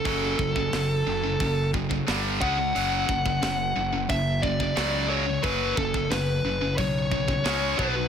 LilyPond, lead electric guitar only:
\new Staff \with { instrumentName = "Lead electric guitar" } { \time 4/4 \key fis \phrygian \tempo 4 = 89 a'2~ a'8 r4 fis''8~ | fis''2 e''8 d''4 cis''8 | b'8 a'8 b'4 cis''4. b'8 | }